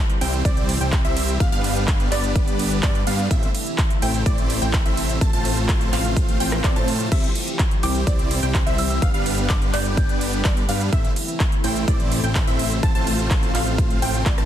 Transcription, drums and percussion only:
0.10 closed hi-hat soft
0.21 open hi-hat loud
0.21 ride medium
0.33 closed hi-hat soft
0.45 kick loud
0.45 closed hi-hat medium
0.45 ride medium
0.57 closed hi-hat soft
0.69 open hi-hat loud
0.69 ride medium
0.81 closed hi-hat soft
0.92 kick loud
0.92 clap loud
0.92 closed hi-hat medium
0.92 ride medium
1.05 closed hi-hat soft
1.17 open hi-hat loud
1.17 ride medium
1.28 closed hi-hat soft
1.40 kick loud
1.40 closed hi-hat medium
1.40 ride medium
1.52 closed hi-hat soft
1.64 open hi-hat loud
1.64 ride medium
1.76 closed hi-hat soft
1.88 kick loud
1.88 clap loud
1.88 closed hi-hat medium
1.88 ride medium
2.00 closed hi-hat soft
2.12 clap soft
2.12 open hi-hat loud
2.12 ride medium
2.24 closed hi-hat soft
2.36 kick loud
2.36 closed hi-hat medium
2.36 ride medium
2.48 closed hi-hat soft
2.59 open hi-hat loud
2.59 ride medium
2.71 closed hi-hat soft
2.83 kick loud
2.83 clap loud
2.83 closed hi-hat medium
2.83 ride medium
2.95 closed hi-hat soft
3.07 open hi-hat loud
3.07 ride medium
3.19 closed hi-hat soft
3.31 kick loud
3.31 closed hi-hat medium
3.31 ride medium
3.43 closed hi-hat soft
3.55 open hi-hat loud
3.55 ride medium
3.66 closed hi-hat soft
3.78 kick loud
3.78 clap loud
3.78 closed hi-hat medium
3.78 ride medium
3.90 closed hi-hat soft
4.02 open hi-hat loud
4.02 ride medium
4.14 closed hi-hat soft
4.26 kick loud
4.26 closed hi-hat medium
4.26 ride medium
4.38 closed hi-hat soft
4.50 open hi-hat loud
4.50 ride medium
4.62 closed hi-hat soft
4.73 kick loud
4.73 clap loud
4.73 closed hi-hat medium
4.73 ride medium
4.86 closed hi-hat soft
4.97 open hi-hat loud
4.97 ride medium
5.09 closed hi-hat soft
5.21 kick loud
5.21 closed hi-hat medium
5.21 ride medium
5.33 closed hi-hat soft
5.45 open hi-hat loud
5.45 ride medium
5.57 closed hi-hat soft
5.69 kick loud
5.69 clap loud
5.69 closed hi-hat medium
5.69 ride medium
5.81 closed hi-hat soft
5.93 clap soft
5.93 open hi-hat loud
5.93 ride medium
6.05 closed hi-hat soft
6.17 kick loud
6.17 closed hi-hat medium
6.17 ride medium
6.29 closed hi-hat soft
6.40 open hi-hat loud
6.40 ride medium
6.52 cross-stick medium
6.52 clap soft
6.52 closed hi-hat soft
6.64 kick loud
6.64 clap loud
6.64 closed hi-hat medium
6.64 ride medium
6.76 closed hi-hat soft
6.88 open hi-hat loud
6.88 ride medium
7.00 closed hi-hat soft
7.12 kick loud
7.12 closed hi-hat medium
7.12 crash medium
7.12 ride medium
7.24 closed hi-hat soft
7.35 open hi-hat loud
7.35 ride medium
7.47 closed hi-hat soft
7.59 kick loud
7.59 clap loud
7.59 closed hi-hat medium
7.59 ride medium
7.71 closed hi-hat soft
7.83 open hi-hat loud
7.83 ride medium
7.95 closed hi-hat soft
8.07 kick loud
8.07 closed hi-hat medium
8.07 ride medium
8.19 closed hi-hat soft
8.31 open hi-hat loud
8.31 ride medium
8.43 closed hi-hat soft
8.54 kick loud
8.54 clap loud
8.54 closed hi-hat medium
8.54 ride medium
8.67 closed hi-hat soft
8.78 open hi-hat loud
8.78 ride medium
8.90 closed hi-hat soft
9.02 kick loud
9.02 closed hi-hat medium
9.02 ride medium
9.14 closed hi-hat soft
9.26 open hi-hat loud
9.26 ride medium
9.38 closed hi-hat soft
9.50 kick loud
9.50 clap loud
9.50 closed hi-hat medium
9.50 ride medium
9.62 closed hi-hat soft
9.73 clap soft
9.73 open hi-hat loud
9.73 ride medium
9.86 closed hi-hat soft
9.97 kick loud
9.97 closed hi-hat medium
9.97 ride medium
10.09 closed hi-hat soft
10.21 open hi-hat loud
10.21 ride medium
10.33 closed hi-hat soft
10.45 kick loud
10.45 clap loud
10.45 closed hi-hat medium
10.45 ride medium
10.57 closed hi-hat soft
10.69 open hi-hat loud
10.69 ride medium
10.81 closed hi-hat soft
10.93 kick loud
10.93 closed hi-hat medium
10.93 ride medium
11.04 closed hi-hat soft
11.16 open hi-hat loud
11.16 ride medium
11.28 closed hi-hat soft
11.40 kick loud
11.40 clap loud
11.40 closed hi-hat medium
11.40 ride medium
11.52 closed hi-hat soft
11.64 open hi-hat loud
11.64 ride medium
11.76 closed hi-hat soft
11.88 kick loud
11.88 closed hi-hat medium
11.88 ride medium
12.00 closed hi-hat soft
12.12 open hi-hat loud
12.12 ride medium
12.24 closed hi-hat soft
12.35 kick loud
12.35 clap loud
12.35 closed hi-hat medium
12.35 ride medium
12.47 closed hi-hat soft
12.59 open hi-hat loud
12.59 ride medium
12.71 closed hi-hat soft
12.83 kick loud
12.83 closed hi-hat medium
12.83 ride medium
12.95 closed hi-hat soft
13.07 open hi-hat loud
13.07 ride medium
13.19 closed hi-hat soft
13.31 kick loud
13.31 clap loud
13.31 closed hi-hat medium
13.31 ride medium
13.43 closed hi-hat soft
13.55 clap soft
13.55 open hi-hat loud
13.55 ride medium
13.67 closed hi-hat soft
13.78 kick loud
13.78 closed hi-hat medium
13.78 ride medium
13.90 closed hi-hat soft
14.02 open hi-hat loud
14.02 ride medium
14.14 closed hi-hat soft
14.26 kick loud
14.26 clap loud
14.26 closed hi-hat medium
14.26 ride medium
14.38 cross-stick medium
14.38 closed hi-hat soft

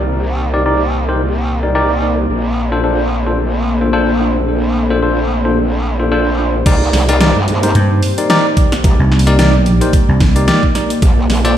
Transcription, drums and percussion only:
6.66 kick loud
6.66 closed hi-hat medium
6.66 crash loud
6.93 snare soft
6.93 open hi-hat medium
7.09 closed hi-hat medium
7.21 snare loud
7.21 closed hi-hat medium
7.48 closed hi-hat soft
7.63 closed hi-hat medium
7.75 closed hi-hat medium
8.03 open hi-hat medium
8.18 closed hi-hat medium
8.30 snare loud
8.30 closed hi-hat medium
8.57 kick loud
8.57 closed hi-hat medium
8.72 snare medium
8.72 closed hi-hat medium
8.84 kick loud
8.84 closed hi-hat medium
9.12 snare soft
9.19 open hi-hat medium
9.27 closed hi-hat medium
9.39 snare loud
9.39 closed hi-hat medium
9.66 closed hi-hat soft
9.81 closed hi-hat medium
9.93 kick loud
9.93 closed hi-hat medium
10.20 kick loud
10.20 snare medium
10.20 open hi-hat medium
10.36 closed hi-hat medium
10.48 snare loud
10.48 closed hi-hat medium
10.63 kick medium
10.75 snare soft
10.75 closed hi-hat medium
10.90 closed hi-hat medium
11.02 kick loud
11.02 closed hi-hat medium
11.30 snare soft
11.30 open hi-hat medium
11.45 closed hi-hat medium

